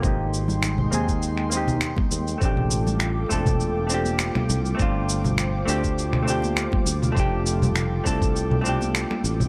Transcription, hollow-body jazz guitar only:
X:1
M:4/4
L:1/8
Q:"Swing 16ths" 1/4=101
K:Gmix
V:1 name="Hollow-body jazz guitar"
[_B,C_EG]3 [B,CE_A]2 [B,CEG]3 | [A,CDG]3 [A,CDA]2 [A,CDG]3 | [A,CDF]3 [A,CDG]2 [A,CDG]3 | [A,CDG]3 [A,CDA]2 [A,CDG]3 |]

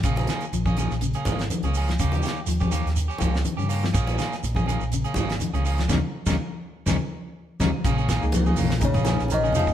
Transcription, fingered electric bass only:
X:1
M:4/4
L:1/16
Q:"Swing 16ths" 1/4=123
K:Bbdor
V:1 name="Fingered electric bass" clef=bass
B,,,2 z2 B,,,3 B,,,2 z A,,,2 z D,,3 | E,,2 z2 E,,3 E,,2 z D,,2 z G,,3 | B,,,2 z2 B,,,3 B,,,2 z A,,,2 z D,,3 | E,, z2 E,, z4 E,, z4 z E,, z |
B,,,3 D,,3 B,,,2 B,,,3 B,,,3 F,, z |]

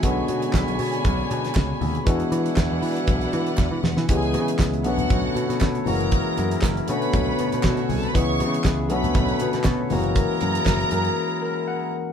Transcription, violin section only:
X:1
M:4/4
L:1/8
Q:1/4=118
K:Bdor
V:1 name="Violin section"
[Dcg]8 | [DBf]8 | [Gg]2 z [Ff]3 z [^A^a]- | [^A^a]2 z [Bb]3 (3[Dd]/2 [Ee]/2 [Ff]/2 (3[Gg]/2 [=A=a]/2 [Bb]/2 |
[cc']2 z [Bb]3 z [^A^a]- | [^A^a]6- [Aa] z |]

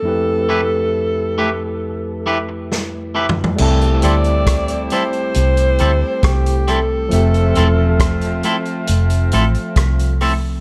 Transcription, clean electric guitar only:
X:1
M:4/4
L:1/8
Q:1/4=68
K:C
V:1 name="Clean electric guitar"
z [A,EGB] z [A,EGB] z [A,EGB] z [A,EGB] | z [G,CEA] z [G,CEA] z [G,CEA] z [G,CEA] | z [A,CEA] z [A,CEA] z [A,CEA] z [A,CEA] |]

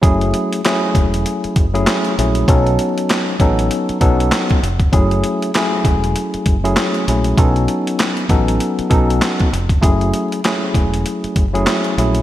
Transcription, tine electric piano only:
X:1
M:4/4
L:1/16
Q:"Swing 16ths" 1/4=98
K:F#dor
V:1 name="Tine electric piano"
[F,A,CEG]4 [F,A,CEG]6 z [F,A,CEG]3 [F,A,CEG]2 | [F,B,CDA]6 [F,B,CDA]4 [F,B,CDA]4 z2 | [F,A,CEG]4 [F,A,CEG]6 z [F,A,CEG]3 [F,A,CEG]2 | [F,B,CDA]6 [F,B,CDA]4 [F,B,CDA]4 z2 |
[F,A,CEG]4 [F,A,CEG]6 z [F,A,CEG]3 [F,A,CEG]2 |]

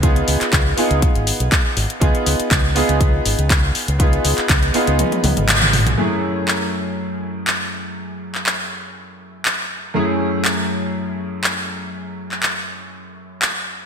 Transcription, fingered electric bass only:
X:1
M:4/4
L:1/16
Q:1/4=121
K:F#dor
V:1 name="Fingered electric bass" clef=bass
C,, z C,, z C,,2 z C,, z G,,, z B,,, z2 G,,, z | C,, z C,, z C,,2 z C,,2 z G,,, C,,3 z C,,- | C,, z C,, z C,,2 z C,, z2 C,, G,,,4 B,,, | z16 |
z16 | z16 | z16 |]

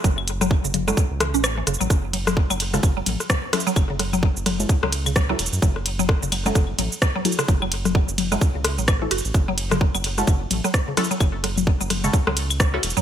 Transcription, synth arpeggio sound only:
X:1
M:4/4
L:1/16
Q:"Swing 16ths" 1/4=129
K:F#m
V:1 name="Synth arpeggio sound" clef=bass
F, z2 F, z C, C, F, z2 E, C z E, C, F, | z2 F, z2 F, z C, F, F, z2 F, z2 F, | z C, F, F, z2 F, z2 F, z C, F, F, z2 | F, z2 F, z C, F, F, z2 F, z2 F, z C, |
F, F, z2 F, z2 F, z C, z F, z E, F z | z F, z C, F, F, z2 F, z2 F, z C, F, F, | z2 F, z2 F, z C, F, F, z2 F, z2 F, |]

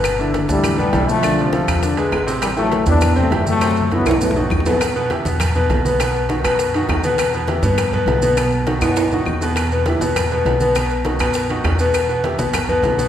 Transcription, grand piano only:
X:1
M:4/4
L:1/8
Q:1/4=202
K:Bphr
V:1 name="Grand piano"
[B,,B,B] [D,DE]2 [D,DE]2 [B,,B,B] [D,DE]2 | [D,Dd]2 [=F,=FA]2 [D,Dd] [^G,^GB]2 [C,Cc]- | [C,Cc] [E,EG]2 [E,EG]2 [C,Cc] [E,EG]2 | [C,Cc]2 [E,EF]2 [B,,B,B] [^D,^DF]2 [B,,B,B] |
[K:Em] z [B,,B,B] [E,EG] [B,,B,B]2 [B,,B,B]2 [B,,B,B] | [B,,B,B]2 [^D,^DF] [B,,B,B]2 [D,DF]2 [B,,B,B]- | [B,,B,B] [B,,B,B] [E,EG] [B,,B,B]2 [B,,B,B]2 [B,,B,B] | [B,,B,B]2 [^D,^DF] [B,,B,B]2 [D,DF]2 [B,,B,B]- |
[B,,B,B] [B,,B,B] [E,EG] [B,,B,B]2 [B,,B,B]2 [B,,B,B] | [B,,B,B]2 [^D,^DF] [B,,B,B]2 [D,DF]2 [B,,B,B]- | [B,,B,B] [B,,B,B] [E,EG] [B,,B,B]2 [B,,B,B]2 [B,,B,B] |]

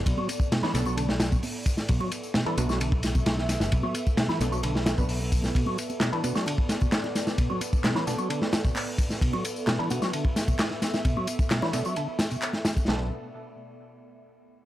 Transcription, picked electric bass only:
X:1
M:4/4
L:1/16
Q:1/4=131
K:Bm
V:1 name="Picked electric bass" clef=bass
B,,, z4 z B,,,6 z4 | B,,, z4 z B,,,6 B,,,3 F,,, | B,,, z4 z B,,,2 B,,,3 B,,,4- B,,, | z16 |
z16 | z16 | z16 | B,,,2 z12 z2 |]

